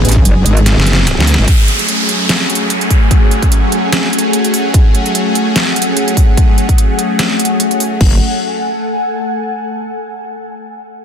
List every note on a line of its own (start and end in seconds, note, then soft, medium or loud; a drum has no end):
0.00 1.44 D3 medium
0.00 1.44 G#3 medium
0.00 1.44 B3 medium
0.00 1.44 G#4 loud
0.05 0.24 A1 loud
0.05 closed hi-hat medium
0.09 closed hi-hat medium
0.12 closed hi-hat medium
0.16 kick medium
0.25 0.44 F#1 loud
0.25 closed hi-hat medium
0.46 0.75 G#1 loud
0.46 closed hi-hat medium
0.57 closed hi-hat soft
0.66 snare medium
0.66 closed hi-hat medium
0.77 1.16 F#1 loud
0.77 snare medium
0.87 closed hi-hat medium
0.93 snare medium
1.07 snare medium
1.07 closed hi-hat medium
1.18 1.37 D2 loud
1.18 snare loud
1.27 open hi-hat medium
1.34 snare loud
1.38 1.46 G#1 loud
1.48 7.97 F#3 medium
1.48 7.97 A3 medium
1.48 8.01 A3 medium
1.48 7.97 C#4 medium
1.48 7.97 G#4 medium
1.48 kick loud
1.48 closed hi-hat medium
1.48 downlifter medium
1.68 closed hi-hat medium
1.79 closed hi-hat soft
1.89 closed hi-hat medium
2.06 8.01 F#5 medium
2.06 closed hi-hat medium
2.23 5.81 G#5 medium
2.29 snare loud
2.29 closed hi-hat medium
2.50 closed hi-hat medium
2.55 closed hi-hat medium
2.70 closed hi-hat medium
2.81 closed hi-hat soft
2.90 kick medium
2.90 open hi-hat medium
3.11 kick loud
3.11 closed hi-hat medium
3.31 closed hi-hat medium
3.42 kick medium
3.42 closed hi-hat soft
3.52 closed hi-hat medium
3.72 closed hi-hat medium
3.93 snare loud
3.93 closed hi-hat medium
4.13 closed hi-hat medium
4.19 closed hi-hat medium
4.33 closed hi-hat medium
4.44 closed hi-hat soft
4.54 open hi-hat medium
4.74 kick loud
4.74 closed hi-hat medium
4.95 closed hi-hat soft
5.06 closed hi-hat soft
5.15 closed hi-hat medium
5.35 closed hi-hat medium
5.56 snare loud
5.56 closed hi-hat medium
5.76 closed hi-hat soft
5.82 closed hi-hat medium
5.97 closed hi-hat medium
6.08 closed hi-hat soft
6.17 kick medium
6.17 open hi-hat medium
6.37 kick loud
6.37 closed hi-hat medium
6.58 closed hi-hat soft
6.69 kick medium
6.69 closed hi-hat soft
6.78 closed hi-hat medium
6.99 closed hi-hat medium
7.19 snare loud
7.19 closed hi-hat medium
7.39 closed hi-hat soft
7.45 closed hi-hat medium
7.60 closed hi-hat medium
7.71 closed hi-hat soft
7.80 open hi-hat medium
8.01 8.20 F#1 loud
8.01 9.60 A4 medium
8.01 kick loud
8.01 crash medium
8.08 9.60 F#5 medium
8.14 9.60 G#5 medium